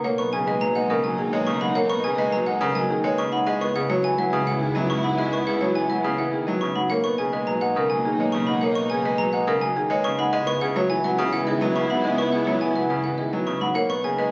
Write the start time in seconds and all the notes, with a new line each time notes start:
0.03 B1 A#3 D#4 A#4 C#5 F#5
0.18 B3 C#6
0.33 C#3 G#4 B4 G#5
0.47 G#3 G#4 B4
0.61 F#3 A#5
0.75 G#3 B4 F#5
0.89 C#3 A#4
1.04 F#3 G#5
1.18 D#3 D#4 G#4
1.32 G#3 B4 C#5
1.47 C#3 C#6
1.61 G#3 D#4 F#5 B5
1.75 A#3 A#4 C#5 F#5
1.90 B3 C#6
2.04 C#3 G#4 B4 G#5
2.18 G#3 G#4 B4
2.32 F#3 A#5
2.46 G#3 B4 F#5
2.61 C#3 A#4
2.75 F#3 G#5
2.90 D#3 D#4 G#4
3.04 G#3 B4 C#5
3.18 C#3 C#6
3.32 G#3 D#4 F#5 B5
3.47 C#2 G#3 B3 E4 G#4 D#5 E5
3.61 B3 C#6
3.75 C#3 G#4 B4 F#5
3.89 F#3 F#4 C#5
4.04 E3 G#5
4.18 F#3 E5 F#5
4.32 C#3 G#4 B4
4.46 E3 F#5
4.61 D#3 D#4 G#4
4.75 F#3 B4 D#5
4.90 C#3 C#6
5.03 F#3 D#4 F#5 B5
5.18 G#3 G#4 D#5 E5
5.33 B3 C#6
5.47 C#3 G#4 B4 F#5
5.61 F#3 F#4 C#5
5.75 E3 G#5
5.90 F#3 B4 E5 F#5
6.04 C#3 G#4 B4
6.18 E3 F#5
6.33 D#3 D#4 G#4
6.47 F#3 B4 D#5
6.61 C#3 C#6
6.75 F#3 D#4 F#5 B5
6.90 B1 A#3 D#4 A#4 C#5 F#5
7.04 B3 C#6
7.18 C#3 G#4 B4 G#5
7.33 G#3 G#4 B4
7.47 F#3 A#5
7.61 G#3 B4 F#5
7.76 C#3 A#4
7.90 F#3 G#5
8.04 D#3 D#4 G#4
8.19 G#3 B4 C#5
8.32 C#3 C#6
8.47 G#3 D#4 F#5 B5
8.61 A#3 A#4 C#5 F#5
8.75 B3 C#6
8.90 C#3 G#4 B4 G#5
9.05 G#3 G#4 B4
9.18 F#3 A#5
9.33 G#3 B4 F#5
9.47 C#3 A#4
9.61 F#3 G#5
9.76 D#3 D#4 G#4
9.90 G#3 B4 C#5
10.04 C#3 C#6
10.18 G#3 D#4 F#5 B5
10.33 C#2 G#3 B3 E4 G#4 D#5 E5
10.47 B3 C#6
10.61 C#3 G#4 B4 F#5
10.76 F#3 F#4 C#5
10.90 E3 G#5
11.04 F#3 B4 E5 F#5
11.18 C#3 G#4 B4
11.33 E3 F#5
11.47 D#3 D#4 G#4 D#5
11.61 F#3 B4 D#5
11.76 C#3 C#6
11.90 F#3 D#4 F#5 B5
12.04 G#3 G#4 D#5 E5
12.18 B3 C#6
12.32 C#3 G#4 B4 F#5
12.47 F#3 F#4 C#5
12.61 E3 G#5
12.76 F#3 B4 E5 F#5
12.90 C#3 G#4 B4
13.04 E3 F#5
13.18 D#3 D#4 G#4 D#5
13.33 F#3 B4 D#5
13.47 C#3 C#6
13.61 F#3 D#4 F#5 B5
13.75 B1 A#3 D#4 A#4 C#5 F#5
13.89 B3 C#6
14.04 C#3 G#4 B4 G#5
14.18 G#3 G#4 B4